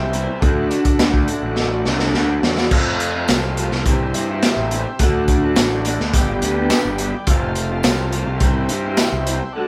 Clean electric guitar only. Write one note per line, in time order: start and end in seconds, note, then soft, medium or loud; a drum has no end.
0.00 0.41 C3 medium
0.00 0.12 E3 medium
0.00 0.13 G3 medium
0.00 0.14 C4 medium
0.00 0.14 E4 medium
0.13 0.40 E3 medium
0.13 0.29 G3 medium
0.13 0.28 C4 medium
0.13 0.26 E4 medium
0.28 0.41 G3 medium
0.28 0.41 C4 medium
0.28 0.41 E4 medium
0.41 0.69 D3 medium
0.41 0.70 A3 medium
0.41 0.71 D4 medium
0.41 0.71 F#4 medium
0.70 0.98 D3 medium
0.70 0.86 A3 medium
0.70 0.84 D4 medium
0.70 0.83 F#4 medium
0.84 0.99 A3 medium
0.84 1.00 D4 medium
0.84 1.01 F#4 medium
0.99 1.27 D3 medium
0.99 1.29 A3 medium
0.99 1.29 D4 medium
0.99 1.30 F#4 medium
1.28 1.72 D3 medium
1.28 1.45 A3 medium
1.28 1.43 D4 medium
1.28 1.41 F#4 medium
1.42 1.86 A3 medium
1.42 1.86 D4 medium
1.42 1.87 F#4 medium
1.85 2.13 D3 medium
1.85 2.02 A3 medium
1.85 2.01 D4 medium
1.85 2.00 F#4 medium
2.01 2.15 A3 medium
2.01 2.15 D4 medium
2.01 2.16 F#4 medium
2.14 2.42 D3 medium
2.14 2.44 A3 medium
2.14 2.45 D4 medium
2.14 2.46 F#4 medium
2.44 2.70 D3 medium
2.44 2.59 A3 medium
2.44 2.58 D4 medium
2.44 2.57 F#4 medium
2.58 2.72 A3 soft
2.58 2.71 D4 medium
2.58 2.70 F#4 medium
2.72 3.28 F2 medium
2.72 3.30 C3 medium
2.72 3.18 F3 medium
2.72 3.17 A3 medium
2.72 3.16 C4 medium
2.72 3.15 F4 medium
3.16 3.30 F3 medium
3.16 3.30 A3 medium
3.16 3.32 C4 medium
3.16 3.32 F4 medium
3.30 3.85 F2 medium
3.30 3.85 C3 medium
3.30 3.58 F3 loud
3.30 3.59 A3 loud
3.30 3.59 C4 medium
3.30 3.60 F4 loud
3.59 3.74 F3 medium
3.59 3.73 A3 medium
3.59 3.73 C4 medium
3.59 3.73 F4 medium
3.74 muted clean electric guitar stroke soft
3.87 4.29 C3 medium
3.87 4.15 E3 medium
3.87 4.03 G3 medium
3.87 4.02 C4 medium
3.87 4.00 E4 medium
4.01 4.17 G3 medium
4.01 4.17 C4 medium
4.01 4.18 E4 medium
4.16 4.43 E3 medium
4.16 4.32 G3 medium
4.16 4.31 C4 medium
4.16 4.30 E4 medium
4.31 4.44 G3 medium
4.31 4.45 C4 medium
4.31 4.45 E4 medium
4.44 4.99 C3 medium
4.44 4.70 E3 medium
4.44 4.71 G3 medium
4.44 4.73 C4 medium
4.44 4.73 E4 loud
4.71 4.86 E3 medium
4.71 4.86 G3 medium
4.71 4.86 C4 medium
4.71 4.86 E4 medium
4.87 muted clean electric guitar stroke soft
5.00 5.56 D3 medium
5.00 5.45 A3 medium
5.00 5.44 D4 medium
5.00 5.42 F#4 medium
5.44 5.57 A3 medium
5.44 5.58 D4 medium
5.44 5.58 F#4 medium
5.57 5.84 D3 medium
5.57 5.86 A3 medium
5.57 5.86 D4 medium
5.57 5.88 F#4 loud
5.85 6.12 D3 medium
5.85 6.01 A3 medium
5.85 6.00 D4 medium
5.85 6.00 F#4 medium
6.01 muted clean electric guitar stroke soft
6.15 6.57 G2 medium
6.15 6.58 D3 medium
6.15 6.30 G3 medium
6.15 6.29 B3 medium
6.15 6.28 D4 medium
6.15 6.28 G4 medium
6.29 6.41 G3 medium
6.29 6.42 B3 medium
6.29 6.43 D4 medium
6.29 6.44 G4 medium
6.42 6.57 G3 medium
6.42 6.57 B3 medium
6.42 6.56 D4 medium
6.42 6.54 G4 medium
6.56 6.70 G3 medium
6.56 6.70 B3 medium
6.56 6.72 D4 medium
6.56 6.72 G4 medium
6.70 7.26 G2 medium
6.70 7.26 D3 medium
6.70 6.98 G3 medium
6.70 6.99 B3 medium
6.70 7.01 D4 loud
6.70 7.01 G4 medium
6.99 7.14 G3 medium
6.99 7.14 B3 medium
6.99 7.14 D4 medium
6.99 7.13 G4 medium
7.15 muted clean electric guitar stroke soft
7.26 7.83 F2 medium
7.26 7.83 C3 medium
7.26 7.72 F3 medium
7.26 7.72 A3 medium
7.26 7.70 C4 medium
7.26 7.69 F4 medium
7.70 7.84 F3 medium
7.70 7.85 A3 medium
7.70 7.85 C4 medium
7.70 7.85 F4 medium
7.84 8.40 F2 medium
7.84 8.40 C3 loud
7.84 8.12 F3 loud
7.84 8.13 A3 medium
7.84 8.14 C4 loud
7.84 8.15 F4 loud
8.13 8.27 F3 medium
8.13 8.27 A3 medium
8.13 8.27 C4 medium
8.13 8.26 F4 medium
8.27 muted clean electric guitar stroke medium
8.41 8.84 C3 medium
8.41 8.68 E3 medium
8.41 8.57 G3 loud
8.41 8.56 C4 loud
8.41 8.54 E4 medium
8.55 8.69 G3 medium
8.55 8.70 C4 medium
8.55 8.71 E4 medium
8.69 8.97 E3 medium
8.69 8.87 G3 medium
8.69 8.85 C4 medium
8.69 8.83 E4 medium
8.84 8.98 G3 medium
8.84 8.99 C4 medium
8.84 9.00 E4 medium
8.98 9.54 C3 medium
8.98 9.25 E3 medium
8.98 9.26 G3 medium
8.98 9.27 C4 loud
8.98 9.28 E4 medium
9.26 9.41 E3 medium
9.26 9.41 G3 medium
9.26 9.41 C4 medium
9.26 9.40 E4 medium
9.41 muted clean electric guitar stroke soft
9.56 9.68 D3 medium
9.56 9.68 A3 medium
9.56 9.68 D4 medium
9.56 9.68 F#4 loud